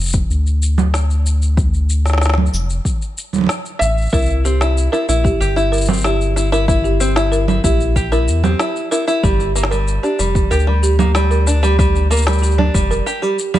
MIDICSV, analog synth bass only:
0, 0, Header, 1, 2, 480
1, 0, Start_track
1, 0, Tempo, 638298
1, 1185, Time_signature, 4, 2, 24, 8
1, 10220, End_track
2, 0, Start_track
2, 0, Title_t, "Analog synth bass"
2, 0, Program_c, 0, 38
2, 0, Note_on_c, 0, 29, 91
2, 183, Note_off_c, 0, 29, 0
2, 224, Note_on_c, 0, 38, 89
2, 1872, Note_off_c, 0, 38, 0
2, 1903, Note_on_c, 0, 29, 97
2, 2104, Note_off_c, 0, 29, 0
2, 2863, Note_on_c, 0, 33, 90
2, 3064, Note_off_c, 0, 33, 0
2, 3104, Note_on_c, 0, 36, 96
2, 3672, Note_off_c, 0, 36, 0
2, 3824, Note_on_c, 0, 34, 94
2, 4024, Note_off_c, 0, 34, 0
2, 4063, Note_on_c, 0, 31, 91
2, 5712, Note_off_c, 0, 31, 0
2, 5744, Note_on_c, 0, 34, 97
2, 6223, Note_on_c, 0, 40, 80
2, 6235, Note_off_c, 0, 34, 0
2, 6424, Note_off_c, 0, 40, 0
2, 6944, Note_on_c, 0, 31, 94
2, 7512, Note_off_c, 0, 31, 0
2, 7663, Note_on_c, 0, 29, 93
2, 7864, Note_off_c, 0, 29, 0
2, 7902, Note_on_c, 0, 38, 90
2, 9551, Note_off_c, 0, 38, 0
2, 9583, Note_on_c, 0, 29, 99
2, 9784, Note_off_c, 0, 29, 0
2, 10220, End_track
0, 0, End_of_file